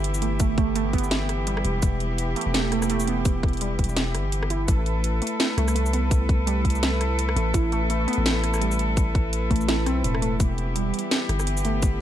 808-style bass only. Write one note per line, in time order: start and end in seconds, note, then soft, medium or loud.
0.00 1.64 G1 medium
1.65 1.82 E1 medium
1.83 2.35 E1 loud
2.46 3.78 E1 medium
3.79 4.16 E1 medium
4.15 4.67 G1 medium
4.68 5.21 A1 loud
5.58 7.35 C2 medium
7.36 7.53 A1 medium
7.54 8.07 A1 loud
8.18 9.50 A1 medium
9.51 9.88 A1 medium
9.86 10.03 B1 medium
10.04 10.39 E1 loud
10.40 10.92 E1 loud
11.29 12.01 G1 medium